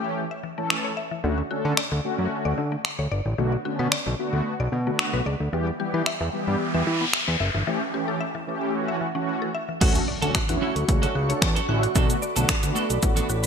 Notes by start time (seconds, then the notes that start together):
Already playing: E3 A3 C#4 G4
0.31 E5
0.44 E3
0.57 E3 A3 C#4 A4
0.70 finger snap
0.84 C#5
0.97 E5
1.11 E3
1.24 D2 D3 A3 C#4 F#4
1.51 D3 A3 C#4 F#4 A4
1.65 D3 C#5
1.77 D5, finger snap
1.92 D2 D3
2.04 D3 A3 C#4 F#4
2.19 F#2
2.45 D2 D5
2.58 D3
2.72 A3
2.85 finger snap
2.99 D2 C#5
3.12 G1 D5
3.26 A1 D3
3.38 B1 D3 A3 B3 F#4
3.65 D3 A3 B3 C#4 F#4
3.79 B2 B4
3.92 D5, finger snap
4.06 B1 D3
4.19 D3 A3 B3 F#4
4.33 D2
4.60 B1 D5
4.72 B2 D3
4.87 D3 A3 B3 F#4
4.99 finger snap
5.13 B1 B4
5.26 C#2 D5
5.40 D2 D3
5.53 E2 E3 G3 B3 G4, noise sweep
5.79 E3 G3 B3 G4
5.94 E3 B4
6.06 E5, finger snap
6.21 E2 E3
6.33 E3 G3 B3 G4
6.48 G2
6.74 E2 E5
6.87 E3
7.01 B3
7.13 finger snap
7.28 E2 B4
7.40 F#1 E5
7.55 G1 E3
7.67 E3 A3 C#4 G4
7.94 E3 A3 C#4 G4
8.08 A4
8.21 E5
8.35 E3
8.47 E3 A3 C#4 G4
8.74 E3 A3 C#4 F#4
8.88 E5
9.01 E3
9.15 E3 A3 C#4 F#4
9.42 A4
9.55 E5
9.69 E3
9.81 D2 D3 F#3 A3 C#4 F#4 A4 D5 C#6, kick, closed hi-hat, crash, impact
9.95 muted clean electric guitar stroke, closed hi-hat
10.08 D5, muted clean electric guitar stroke
10.22 D2 D3 F#3 A3 C#4 F#4 A4 A5, closed hi-hat
10.35 F#6, finger snap, kick, closed hi-hat
10.48 E2 D3 A3 C#4 E4 F#4, muted clean electric guitar stroke, closed hi-hat
10.61 F#3 C#4 F#4 A4
10.75 D2, muted clean electric guitar stroke, closed hi-hat
10.88 C#2 D3 A3 C#4 F#4, muted clean electric guitar stroke, kick, closed hi-hat
11.02 F#3 C#4 F#4 A4 F#6, closed hi-hat
11.15 C#2 F#4, muted clean electric guitar stroke
11.29 D3 A3 C#4 A4 C#5, muted clean electric guitar stroke, closed hi-hat
11.41 E2, finger snap, muted clean electric guitar stroke, kick, closed hi-hat
11.56 F#3 C#4 F#4 A4 A5, closed hi-hat
11.68 A1 D3 F#3 A3 C#4 E4 F#4 A4 F#6
11.83 F#4, muted clean electric guitar stroke, closed hi-hat
11.95 B1 D3 A3 B3 D4 F#4 A4 B5, kick, closed hi-hat, shaker
12.09 muted clean electric guitar stroke, closed hi-hat, shaker
12.22 D5, muted clean electric guitar stroke, shaker
12.36 B1 D3 A3 B3 D4 F#4 A4 A5, closed hi-hat, shaker
12.49 F#6, finger snap, kick, closed hi-hat, shaker
12.63 D2 D3 A3 B3 F#4, muted clean electric guitar stroke, closed hi-hat, shaker
12.75 A3 D4 F#4 A4, shaker
12.89 B1, muted clean electric guitar stroke, closed hi-hat, shaker
13.02 A1 D3 A3 B3 F#4, muted clean electric guitar stroke, kick, closed hi-hat, shaker
13.16 A3 D4 F#4 A4 F#6, closed hi-hat, shaker
13.29 A1 F#4, muted clean electric guitar stroke, shaker
13.43 muted clean electric guitar stroke